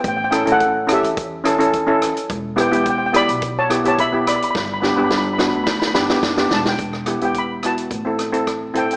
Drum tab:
HH |x-xxx-xxx-xxx-xx|x-xxx-xxx-xxx-xx|----------------|x-xxx-xxx-xxx-xx|
SD |--r---r---r---r-|--r---r---r---r-|o-o-o-o-oooooooo|-rr---r---r-r---|
BD |o---o---o---o---|o---o---o---o---|o---o---o---o---|o---o---o---o---|